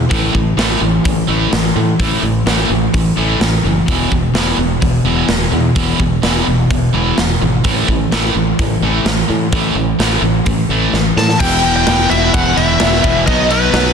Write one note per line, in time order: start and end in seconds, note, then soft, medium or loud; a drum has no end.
0.09 0.28 A1 medium
0.09 0.31 A2 medium
0.09 0.32 E3 medium
0.09 0.33 A3 medium
0.09 kick loud
0.09 open hi-hat soft
0.33 0.52 A1 medium
0.33 0.55 A2 medium
0.33 0.55 E3 medium
0.33 kick medium
0.57 0.75 A1 medium
0.57 0.80 A2 medium
0.57 0.80 E3 medium
0.57 0.80 A3 medium
0.57 snare loud
0.57 open hi-hat soft
0.81 0.98 A1 medium
0.81 1.03 A2 medium
0.81 1.03 E3 medium
1.05 1.23 A1 medium
1.05 1.27 A2 medium
1.05 1.26 E3 medium
1.05 kick loud
1.05 open hi-hat soft
1.28 1.46 A1 medium
1.28 1.51 A2 medium
1.28 1.51 E3 medium
1.28 1.51 A3 medium
1.52 1.70 A1 medium
1.52 1.73 A2 medium
1.52 1.74 E3 medium
1.52 snare loud
1.52 open hi-hat soft
1.75 1.93 A2 medium
1.75 1.97 A2 medium
1.75 1.97 E3 medium
1.99 2.16 A1 medium
1.99 2.21 A2 medium
1.99 2.22 E3 medium
1.99 2.22 A3 medium
1.99 kick loud
1.99 open hi-hat medium
2.23 2.40 A1 medium
2.23 2.44 A2 medium
2.23 2.44 E3 medium
2.46 2.63 A1 medium
2.46 2.68 A2 medium
2.46 2.69 E3 medium
2.46 2.69 A3 medium
2.46 snare loud
2.46 open hi-hat medium
2.70 2.87 A1 medium
2.70 2.91 A2 medium
2.70 2.92 E3 medium
2.94 3.11 A1 medium
2.94 3.15 A2 medium
2.94 3.15 E3 medium
2.94 kick loud
2.94 open hi-hat soft
3.16 3.34 A1 medium
3.16 3.39 A2 medium
3.16 3.39 E3 medium
3.16 3.40 A3 medium
3.40 3.58 A1 medium
3.40 3.62 A2 medium
3.40 3.62 E3 medium
3.40 snare loud
3.40 open hi-hat medium
3.63 3.82 F#1 medium
3.63 3.85 A2 medium
3.63 3.85 E3 medium
3.86 4.05 E1 medium
3.86 4.09 E2 medium
3.86 4.10 B2 medium
3.86 4.10 E3 medium
3.86 kick loud
3.86 open hi-hat medium
4.11 4.29 E1 medium
4.11 4.32 E2 medium
4.11 4.32 B2 medium
4.11 kick medium
4.34 4.51 E1 medium
4.34 4.55 E2 medium
4.34 4.56 B2 medium
4.34 4.57 E3 medium
4.34 snare loud
4.34 open hi-hat soft
4.56 4.75 E1 medium
4.56 4.79 E2 medium
4.56 4.79 B2 medium
4.80 4.99 E1 medium
4.80 5.02 E2 medium
4.80 5.03 B2 medium
4.80 kick loud
4.80 open hi-hat soft
5.05 5.22 E1 medium
5.05 5.27 E2 medium
5.05 5.28 B2 medium
5.05 5.28 E3 medium
5.29 5.46 E1 medium
5.29 5.50 E2 medium
5.29 5.50 B2 medium
5.29 snare loud
5.29 open hi-hat soft
5.52 5.69 E2 medium
5.52 5.74 E2 medium
5.52 5.74 B2 medium
5.76 5.93 E1 medium
5.76 5.98 E2 medium
5.76 5.99 B2 medium
5.76 5.99 E3 medium
5.76 kick loud
5.76 open hi-hat soft
5.99 6.17 E1 medium
5.99 6.22 E2 medium
5.99 6.22 B2 medium
5.99 kick medium
6.23 6.41 E1 medium
6.23 6.46 E2 medium
6.23 6.46 B2 medium
6.23 6.46 E3 medium
6.23 snare loud
6.23 open hi-hat soft
6.47 6.64 E1 medium
6.47 6.68 E2 medium
6.47 6.68 B2 medium
6.70 6.87 E1 medium
6.70 6.92 E2 medium
6.70 6.92 B2 medium
6.70 kick loud
6.70 open hi-hat soft
6.94 7.11 E1 medium
6.94 7.16 E2 medium
6.94 7.16 B2 medium
6.94 7.17 E3 medium
7.18 7.35 E1 medium
7.18 7.39 E2 medium
7.18 7.39 B2 medium
7.18 snare loud
7.18 open hi-hat medium
7.42 7.59 G#1 medium
7.42 7.62 E2 medium
7.42 7.63 B2 medium
7.64 7.82 A1 medium
7.64 7.87 A2 medium
7.64 7.87 E3 medium
7.64 7.87 A3 medium
7.64 kick loud
7.64 open hi-hat medium
7.88 8.05 A1 medium
7.88 8.10 A2 medium
7.88 8.10 E3 medium
7.88 kick medium
8.12 8.29 A1 medium
8.12 8.33 A2 medium
8.12 8.34 E3 medium
8.12 8.34 A3 medium
8.12 snare loud
8.12 open hi-hat soft
8.34 8.52 A1 medium
8.34 8.56 A2 medium
8.34 8.56 E3 medium
8.59 8.76 A1 medium
8.59 8.80 A2 medium
8.59 8.80 E3 medium
8.59 kick loud
8.59 open hi-hat soft
8.81 8.99 A1 medium
8.81 9.04 A2 medium
8.81 9.05 E3 medium
8.81 9.05 A3 medium
9.05 9.22 A1 medium
9.05 9.27 A2 medium
9.05 9.27 E3 medium
9.05 snare loud
9.05 open hi-hat soft
9.29 9.50 A2 medium
9.29 9.46 A2 medium
9.29 9.50 E3 medium
9.53 9.69 A1 medium
9.53 9.74 A2 medium
9.53 9.75 E3 medium
9.53 9.75 A3 medium
9.53 kick loud
9.53 open hi-hat soft
9.75 9.92 A1 medium
9.75 9.97 A2 medium
9.75 9.97 E3 medium
9.99 10.16 A1 medium
9.99 10.22 A2 medium
9.99 10.22 E3 medium
9.99 10.23 A3 medium
9.99 snare loud
9.99 open hi-hat soft
10.22 10.39 A1 medium
10.22 10.44 A2 medium
10.22 10.45 E3 medium
10.46 10.63 A1 medium
10.46 10.67 A2 medium
10.46 10.68 E3 medium
10.46 kick loud
10.46 open hi-hat medium
10.69 10.86 A1 medium
10.69 10.92 A2 medium
10.69 10.92 E3 medium
10.69 10.92 A3 medium
10.93 11.10 A1 medium
10.93 11.15 A2 medium
10.93 11.15 E3 medium
10.93 snare medium
11.16 11.33 A2 medium
11.16 11.38 A2 medium
11.16 11.39 E3 medium
11.16 11.40 A5 loud
11.16 snare medium
11.29 snare medium
11.39 11.83 E1 medium
11.39 11.63 E2 medium
11.39 11.63 B2 medium
11.39 11.64 E3 medium
11.39 13.25 E4 medium
11.39 13.93 B4 medium
11.39 13.25 G5 medium
11.39 11.75 G5 loud
11.39 kick loud
11.39 crash loud
11.39 crash medium
11.64 11.86 E2 medium
11.64 11.87 B2 medium
11.64 11.88 E3 medium
11.64 crash medium
11.76 12.08 G5 medium
11.87 12.08 E1 medium
11.87 12.10 E2 medium
11.87 12.11 B2 medium
11.87 12.11 E3 medium
11.87 snare loud
11.87 crash medium
12.10 12.32 E1 medium
12.10 12.33 E2 medium
12.10 12.34 B2 medium
12.10 12.34 E3 loud
12.10 12.32 E5 medium
12.10 crash medium
12.34 12.56 E1 medium
12.34 12.56 E2 loud
12.34 12.57 B2 loud
12.34 12.57 E3 loud
12.34 12.58 F#5 loud
12.34 kick loud
12.34 crash medium
12.57 12.79 E1 medium
12.57 12.80 E2 medium
12.57 12.80 B2 medium
12.57 12.81 E3 medium
12.57 13.23 E5 loud
12.57 crash medium
12.80 13.02 E1 medium
12.80 13.04 E2 medium
12.80 13.05 B2 medium
12.80 13.05 E3 medium
12.80 snare loud
12.80 crash medium
12.92 snare soft
13.04 13.26 E1 loud
13.04 13.26 E2 medium
13.04 13.26 B2 medium
13.04 13.27 E3 medium
13.04 kick medium
13.04 crash medium
13.27 13.70 B1 medium
13.27 13.49 B2 medium
13.27 13.50 F#3 medium
13.27 13.93 B3 medium
13.27 13.52 B3 loud
13.27 13.93 F#4 medium
13.27 13.51 D#5 loud
13.27 kick loud
13.27 crash medium
13.50 13.72 B2 medium
13.50 13.73 F#3 medium
13.50 13.74 B3 loud
13.50 13.93 B4 loud
13.50 crash medium
13.73 13.93 B1 loud
13.73 13.93 B2 medium
13.73 13.93 F#3 medium
13.73 13.93 B3 medium
13.73 snare loud
13.73 crash medium